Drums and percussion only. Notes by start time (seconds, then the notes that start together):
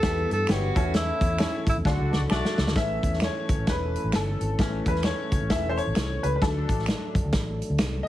0.02 kick, snare, closed hi-hat
0.31 closed hi-hat
0.47 finger snap, snare, closed hi-hat
0.76 kick, closed hi-hat
0.94 snare, closed hi-hat
1.21 kick, closed hi-hat
1.39 finger snap, snare, closed hi-hat
1.67 kick, closed hi-hat
1.85 kick, snare
2.13 snare
2.30 finger snap, snare
2.45 snare
2.58 snare
2.67 snare
2.75 kick, snare, closed hi-hat
3.03 kick, closed hi-hat
3.13 snare
3.20 finger snap, snare, closed hi-hat
3.49 kick, closed hi-hat
3.67 kick, snare, closed hi-hat
3.95 closed hi-hat
4.12 finger snap, snare, closed hi-hat
4.41 closed hi-hat
4.59 kick, snare, closed hi-hat
4.86 kick, closed hi-hat
4.96 snare
5.03 finger snap, snare, closed hi-hat
5.32 kick, closed hi-hat
5.50 kick, snare, closed hi-hat
5.78 closed hi-hat
5.95 finger snap, snare, closed hi-hat
6.23 closed hi-hat
6.42 kick, snare, closed hi-hat
6.69 kick, closed hi-hat
6.79 snare
6.86 finger snap, snare, closed hi-hat
7.15 kick, closed hi-hat
7.32 kick, snare, closed hi-hat
7.62 closed hi-hat
7.78 finger snap, snare, closed hi-hat